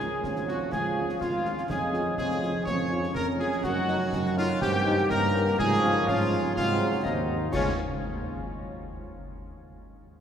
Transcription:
0.00 0.16 C#2 medium
0.00 1.66 F3 medium
0.00 0.20 C#4 medium
0.00 1.66 C#4 medium
0.00 0.43 G#4 medium
0.00 0.44 G#4 loud
0.00 0.44 G#5 loud
0.00 snare medium
0.24 0.65 G#1 medium
0.24 0.73 C#4 medium
0.24 concert bass drum medium
0.24 snare medium
0.36 snare medium
0.48 0.57 G#3 medium
0.48 0.57 C#4 medium
0.48 0.57 F4 medium
0.48 0.71 F#4 loud
0.48 0.73 F#4 medium
0.48 0.54 F#5 medium
0.48 snare medium
0.71 1.13 C#2 medium
0.71 1.68 F4 medium
0.71 1.21 G#4 loud
0.71 1.18 G#4 medium
0.71 1.22 G#5 loud
0.71 concert bass drum medium
0.71 snare medium
0.96 1.05 G#3 medium
0.96 1.05 C#4 medium
0.96 1.05 F4 medium
1.09 snare medium
1.20 1.57 G#1 medium
1.20 1.66 F4 loud
1.20 1.67 F4 medium
1.20 1.68 F5 medium
1.20 concert bass drum medium
1.20 snare medium
1.45 1.53 G#3 medium
1.45 1.54 C#4 medium
1.45 1.54 F4 medium
1.45 snare medium
1.58 snare medium
1.69 2.10 F2 medium
1.69 3.60 F3 medium
1.69 3.60 C#4 medium
1.69 2.67 D#4 medium
1.69 2.15 G#4 loud
1.69 2.17 G#4 medium
1.69 2.14 G#5 loud
1.69 concert bass drum medium
1.69 snare medium
1.69 crash soft
1.93 2.02 G#3 medium
1.93 2.02 C#4 medium
1.93 2.02 F4 medium
1.93 snare medium
2.17 2.59 F2 medium
2.17 2.63 G#4 loud
2.17 2.63 G#5 medium
2.17 concert bass drum medium
2.17 snare medium
2.31 snare medium
2.42 2.51 G#3 medium
2.42 2.50 C#4 medium
2.42 2.51 F4 medium
2.42 snare medium
2.65 3.07 F2 loud
2.65 4.61 C#4 loud
2.65 3.11 C#5 loud
2.65 3.16 C#5 loud
2.65 3.11 C#6 loud
2.65 concert bass drum loud
2.65 snare medium
2.91 3.00 G#3 medium
2.91 3.00 C#4 medium
2.91 3.00 F4 medium
3.03 snare medium
3.14 3.56 F2 loud
3.14 3.26 A#4 loud
3.14 3.27 A#4 loud
3.14 3.20 A#5 loud
3.14 concert bass drum medium
3.14 snare medium
3.39 3.48 G#3 medium
3.39 3.48 C#4 medium
3.39 3.48 F4 medium
3.39 3.62 G#4 loud
3.39 3.51 G#4 medium
3.39 3.62 G#5 medium
3.39 snare medium
3.52 snare medium
3.63 4.05 F#2 loud
3.63 5.54 D#3 medium
3.63 5.55 C#4 medium
3.63 4.37 F#4 loud
3.63 4.33 F#4 loud
3.63 4.12 F#5 loud
3.63 concert bass drum medium
3.63 snare medium
3.63 crash soft
3.87 3.97 A3 medium
3.87 3.96 C#4 medium
3.87 3.96 D#4 medium
3.87 snare medium
4.13 4.54 F#2 loud
4.13 concert bass drum medium
4.13 snare medium
4.26 snare medium
4.36 4.45 A3 medium
4.36 4.45 C#4 medium
4.36 4.45 D#4 medium
4.36 4.60 F4 loud
4.36 4.48 F4 loud
4.36 4.42 F5 loud
4.36 snare medium
4.61 5.02 G2 loud
4.61 5.07 C4 loud
4.61 5.07 G4 loud
4.61 5.06 G5 loud
4.61 concert bass drum loud
4.61 snare medium
4.86 4.95 A#3 medium
4.86 4.95 C#4 loud
4.86 4.95 D#4 loud
4.98 snare medium
5.10 5.51 G2 loud
5.10 5.62 A#3 loud
5.10 5.55 A#4 loud
5.10 5.59 A#4 loud
5.10 5.60 A#5 loud
5.10 concert bass drum medium
5.10 snare medium
5.35 5.44 A#3 medium
5.35 5.44 C#4 medium
5.35 5.43 D#4 medium
5.35 snare medium
5.47 snare medium
5.59 5.99 G#2 loud
5.59 6.52 F3 loud
5.59 6.52 C#4 loud
5.59 6.08 F4 loud
5.59 6.04 G#4 loud
5.59 6.06 G#5 loud
5.59 concert bass drum loud
5.59 snare medium
5.59 crash soft
5.84 5.92 G#3 loud
5.84 5.92 C#4 loud
5.84 5.92 F4 loud
5.84 snare medium
6.06 6.48 G#2 loud
6.06 6.59 C#4 loud
6.06 6.55 F4 loud
6.06 6.54 F4 loud
6.06 6.52 F5 loud
6.06 concert bass drum medium
6.06 snare medium
6.20 snare medium
6.31 6.40 G#3 medium
6.31 6.40 C#4 medium
6.31 6.41 F4 medium
6.31 snare medium
6.55 6.97 G#2 loud
6.55 7.29 F#3 loud
6.55 7.08 G#3 medium
6.55 7.29 C4 loud
6.55 7.01 F4 loud
6.55 7.05 F5 loud
6.55 concert bass drum loud
6.55 snare medium
6.80 6.89 F#3 medium
6.80 6.89 C4 medium
6.80 6.89 D#4 medium
7.03 7.46 D#2 loud
7.03 7.30 C4 medium
7.03 7.53 D#4 loud
7.03 7.50 D#4 medium
7.03 7.51 D#5 medium
7.03 concert bass drum medium
7.03 snare medium
7.29 7.38 F#3 medium
7.29 7.37 C4 medium
7.29 7.38 D#4 medium
7.51 7.74 C#2 loud
7.51 7.74 F3 medium
7.51 7.73 G#3 medium
7.51 7.73 C#4 loud
7.51 7.74 C#4 medium
7.51 7.74 C#4 loud
7.51 7.73 F4 medium
7.51 7.73 C#5 loud
7.51 7.79 C#6 loud
7.51 concert bass drum loud
7.51 snare loud
7.51 crash medium

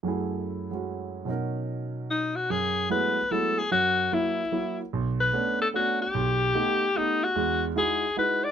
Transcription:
0.03 1.26 F#2 soft
0.03 0.70 F#3 soft
0.03 1.28 A3 soft
0.07 1.28 E4 soft
0.07 1.29 G#4 soft
0.71 1.25 F#3 soft
0.71 1.27 G#3 soft
0.71 1.26 C#4 soft
0.71 1.28 F#4 soft
1.25 2.48 B2 soft
1.25 2.49 F#3 soft
1.25 2.49 C#4 soft
1.25 2.50 D#4 soft
1.30 2.51 A#4 medium
2.10 2.37 D#4 medium
2.36 2.52 F#4 medium
2.50 2.85 F#2 medium
2.50 2.91 G#4 loud
2.90 3.18 F#3 soft
2.90 3.18 G#3 medium
2.90 3.18 A3 soft
2.90 3.18 B3 soft
2.90 3.18 E4 medium
2.90 3.33 B4 medium
3.31 3.59 F#3 soft
3.31 3.59 G#3 soft
3.31 3.59 A3 soft
3.31 3.59 B3 soft
3.31 3.59 E4 medium
3.31 3.60 A4 medium
3.59 3.72 G#4 medium
3.71 4.07 F#2 medium
3.71 4.15 F#4 loud
4.12 4.40 F#3 soft
4.12 4.40 A#3 soft
4.12 4.40 E4 medium
4.12 4.80 E4 medium
4.52 4.80 F#3 soft
4.52 4.80 A#3 soft
4.52 4.80 E4 soft
4.93 5.28 B1 medium
5.20 5.58 B4 medium
5.33 5.61 A3 medium
5.33 5.61 B3 soft
5.33 5.62 C#4 soft
5.33 5.61 D4 medium
5.62 5.68 A4 medium
5.74 6.02 A3 soft
5.74 6.02 B3 soft
5.74 6.02 C#4 soft
5.74 6.02 D4 soft
5.74 5.99 F#4 medium
6.02 6.99 G4 medium
6.15 6.50 B1 medium
6.55 6.83 A3 medium
6.55 6.83 B3 soft
6.55 6.83 D#4 soft
6.55 6.83 G4 medium
6.95 7.23 A3 soft
6.95 7.24 B3 soft
6.95 7.24 D#4 soft
6.95 7.25 D#4 medium
6.95 7.24 G4 soft
7.24 7.63 F#4 medium
7.36 7.71 E2 medium
7.36 7.71 G#3 medium
7.75 8.04 G#3 medium
7.75 8.04 D#4 soft
7.75 8.04 E4 soft
7.75 8.04 F#4 medium
7.75 8.15 G#4 medium
8.17 8.45 G#3 medium
8.17 8.45 D#4 soft
8.17 8.45 E4 soft
8.17 8.45 F#4 medium
8.17 8.46 B4 medium
8.44 8.52 D5 loud

